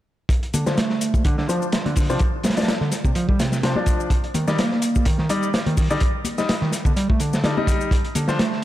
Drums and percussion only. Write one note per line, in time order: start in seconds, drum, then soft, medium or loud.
0.29 kick loud
0.29 closed hi-hat medium
0.29 shaker soft
0.43 closed hi-hat soft
0.54 closed hi-hat medium
0.54 high conga loud
0.54 shaker medium
0.66 snare medium
0.66 shaker soft
0.77 snare loud
0.77 closed hi-hat medium
0.77 shaker soft
0.90 snare soft
1.01 closed hi-hat medium
1.01 shaker medium
1.14 kick medium
1.14 high conga medium
1.14 shaker soft
1.25 kick loud
1.25 closed hi-hat medium
1.25 shaker soft
1.38 snare soft
1.49 closed hi-hat medium
1.49 shaker medium
1.62 shaker soft
1.72 snare loud
1.72 closed hi-hat medium
1.72 shaker soft
1.86 closed hi-hat soft
1.86 high conga medium
1.96 kick medium
1.96 open hi-hat medium
1.96 shaker medium
2.10 shaker soft
2.19 kick loud
2.19 closed hi-hat medium
2.19 shaker soft
2.43 snare medium
2.43 closed hi-hat medium
2.43 high conga medium
2.43 shaker medium
2.50 snare medium
2.50 closed hi-hat medium
2.57 snare medium
2.57 closed hi-hat medium
2.57 shaker soft
2.62 snare medium
2.62 closed hi-hat medium
2.68 snare loud
2.68 closed hi-hat medium
2.68 shaker soft
2.81 snare soft
2.92 snare soft
2.92 closed hi-hat medium
2.92 shaker medium
3.04 kick loud
3.04 high conga medium
3.04 shaker soft
3.15 closed hi-hat medium
3.15 shaker soft
3.29 kick medium
3.39 snare medium
3.39 closed hi-hat medium
3.39 shaker medium
3.52 snare medium
3.52 shaker soft
3.63 snare loud
3.63 closed hi-hat medium
3.63 shaker soft
3.76 high conga loud
3.86 kick medium
3.86 closed hi-hat medium
3.86 shaker medium
4.00 shaker soft
4.10 kick loud
4.10 closed hi-hat medium
4.10 shaker soft
4.24 closed hi-hat soft
4.34 closed hi-hat medium
4.34 high conga medium
4.34 shaker medium
4.48 snare medium
4.48 shaker soft
4.58 snare loud
4.58 closed hi-hat medium
4.58 shaker soft
4.71 snare soft
4.82 closed hi-hat medium
4.82 shaker medium
4.95 kick medium
4.95 high conga medium
4.95 shaker soft
5.05 kick loud
5.05 closed hi-hat medium
5.05 shaker soft
5.18 snare soft
5.29 closed hi-hat medium
5.29 shaker medium
5.43 shaker soft
5.54 snare loud
5.54 closed hi-hat medium
5.54 shaker soft
5.66 closed hi-hat soft
5.66 high conga medium
5.77 kick medium
5.77 open hi-hat medium
5.77 shaker medium
5.90 shaker soft
6.00 kick loud
6.00 closed hi-hat medium
6.00 shaker soft
6.24 closed hi-hat medium
6.24 high conga medium
6.24 shaker medium
6.38 snare soft
6.38 shaker soft
6.49 snare loud
6.49 closed hi-hat medium
6.49 shaker soft
6.61 snare soft
6.72 snare soft
6.72 closed hi-hat medium
6.72 shaker medium
6.85 kick loud
6.85 high conga medium
6.85 shaker soft
6.97 closed hi-hat medium
6.97 shaker soft
7.10 kick medium
7.20 closed hi-hat medium
7.20 shaker medium
7.33 snare medium
7.33 shaker soft
7.44 snare loud
7.44 closed hi-hat medium
7.44 shaker soft
7.57 high conga medium
7.67 kick medium
7.67 closed hi-hat medium
7.67 shaker medium
7.81 shaker soft
7.91 kick loud
7.91 closed hi-hat medium
7.91 shaker soft
8.05 closed hi-hat soft
8.15 closed hi-hat medium
8.15 high conga medium
8.15 shaker medium
8.28 snare medium
8.28 shaker soft
8.39 snare loud
8.39 closed hi-hat medium
8.39 shaker soft
8.53 snare soft